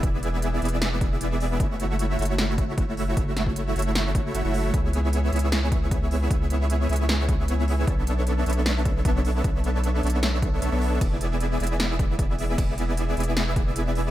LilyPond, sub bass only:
\new Staff \with { instrumentName = "Sub bass" } { \clef bass \time 4/4 \key fis \minor \tempo 4 = 153 e,,4. e,,2~ e,,8 | fis,,4. fis,,2~ fis,,8 | fis,,4. fis,,4. fis,,16 fis,,8. | cis,4. cis,2~ cis,8 |
cis,4. cis,2~ cis,8 | b,,4. b,,2~ b,,8 | b,,4. b,,4. b,,16 b,,8. | e,,4. e,,2~ e,,8 |
e,,4. e,,2~ e,,8 | }